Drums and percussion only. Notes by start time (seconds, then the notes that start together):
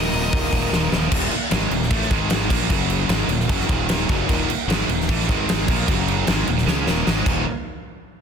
0.13 open hi-hat
0.33 kick, open hi-hat
0.52 kick, open hi-hat
0.73 snare
0.92 snare
1.12 kick, crash
1.31 crash
1.51 snare, crash
1.71 crash
1.82 snare
1.91 kick, crash
2.02 snare
2.11 kick, crash
2.30 snare, crash
2.50 kick, crash
2.70 kick, crash
2.90 crash
3.09 snare, crash
3.29 crash
3.40 snare
3.49 kick, crash
3.60 snare
3.69 kick, crash
3.89 snare, crash
4.09 kick, crash
4.29 kick, crash
4.50 crash
4.70 snare, crash
4.89 crash
5.01 snare
5.09 kick, crash
5.21 snare
5.29 kick, crash
5.49 snare, crash
5.68 kick, crash
5.88 kick, crash
6.08 crash
6.27 snare, crash
6.47 crash
6.58 snare
6.68 snare
6.87 snare
7.07 snare
7.26 kick, crash